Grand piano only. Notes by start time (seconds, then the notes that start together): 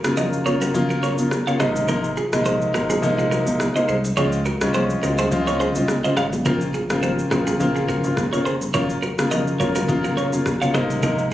0.04 C#3 F#3 A#3 F4
0.45 C#3 F#3 A#3 F4
0.74 C#3 F#3 A#3 F4
1.18 C#3 F#3 A#3 F4
1.47 C#3 F#3 A#3 F4
1.60 C3 G#3 A#3 D#4
1.88 C3 G#3 A#3 D#4
2.32 C3 G#3 A#3 D#4
2.74 C3 G#3 A#3 D#4
3.02 C3 G#3 A#3 D#4
3.46 C3 G#3 A#3 D#4
3.75 C3 G#3 A#3 D#4
4.17 C#3 G#3 C4 F4
4.61 G#3 C4 C#4 F4
5.03 C#3 G#3 C4 F4
5.31 C#3 G#3 C4 F4
5.76 C#3 G#3 C4 F4
6.04 C#3 G#3 C4 F4
6.45 C#3 A#3 C4 F4
6.90 C#3 A#3 C4 F4
7.31 C#3 A#3 C4 F4
7.60 C#3 A#3 C4 F4
8.04 C#3 A#3 C4 F4
8.32 C#3 A#3 C4 F4
8.74 C#3 F#3 A#3 F4
9.18 C#3 F#3 A#3 F4
9.60 C#3 F#3 A#3 F4
9.88 C#3 F#3 A#3 F4
10.32 C#3 F#3 A#3 F4
10.61 C#3 F#3 A#3 F4
10.74 C3 G#3 A#3 D#4
11.03 C3 G#3 A#3 D#4